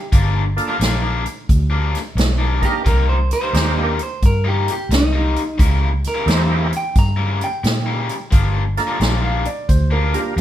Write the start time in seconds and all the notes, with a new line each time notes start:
Already playing: G4
0.12 G1 G2 F3 A#3 D4, kick, closed hi-hat
0.56 A#3 D4 F4 A4, closed hi-hat
0.68 G2 F3 A#3 D4
0.80 A#1 G2 F3 A#3 D4, snare, closed hi-hat
1.02 G2 F3 A#3 D4
1.25 muted overdriven electric guitar stroke, closed hi-hat
1.49 D2, kick, closed hi-hat
1.70 G2 F3 A#3 D4
1.95 snare, closed hi-hat
2.15 B1, muted overdriven electric guitar stroke, snare, closed hi-hat
2.38 G2 F3 A#3 D4
2.61 A#3 D4 D#4 G4 A#4, kick, snare, closed hi-hat
2.85 C2 C3 G3 A#3 D#4 A#4, kick, closed hi-hat
3.09 C5
3.31 C5, snare, closed hi-hat
3.41 C3 G3 A#3 D#4
3.53 D#2 C3 G3 A#3 D4 D#4 G4, snare, closed hi-hat
3.76 C3 G3 A#3 D#4
3.85 A#4
3.99 muted overdriven electric guitar stroke, closed hi-hat
4.03 C5
4.22 G2 A#4, kick, closed hi-hat
4.44 C3 G3 A#3 D#4 G4
4.68 closed hi-hat
4.72 G4
4.89 C2, muted overdriven electric guitar stroke, snare, closed hi-hat
4.94 D#4
5.13 C3 G3 A#3 D#4
5.36 closed hi-hat
5.58 C#2 C#3 G3 A#3 E4, kick, closed hi-hat
6.04 A#4, snare, closed hi-hat
6.15 C#3 G3 A#3 E4
6.26 E2 C#3 G3 A#3 D#4 E4 G4, snare, closed hi-hat
6.31 C5
6.49 C#3 G3 A#3 E4
6.72 muted overdriven electric guitar stroke, closed hi-hat
6.77 G5
6.95 G2 A#5, kick, snare, closed hi-hat
7.17 C#3 G3 A#3 E4
7.41 G5, closed hi-hat
7.64 A#2, muted overdriven electric guitar stroke, snare, closed hi-hat
7.86 C#3 G3 A#3 E4
8.09 closed hi-hat
8.31 G1 G2 F3 A#3 D4, kick, closed hi-hat
8.77 A#3 D4 F4 A4 A#5, snare, closed hi-hat
8.87 G2 F3 A#3 D4
9.00 A#1 G2 F3 A#3 D4 G5, snare, closed hi-hat
9.22 G2 F3 A#3 D4 F5
9.45 D5, muted overdriven electric guitar stroke, closed hi-hat
9.69 D2 C5, kick, closed hi-hat
9.91 G2 F3 A#3 D4 A#4
10.13 A#3 D4 F4 G4 A#4, closed hi-hat
10.36 F2, muted overdriven electric guitar stroke, closed hi-hat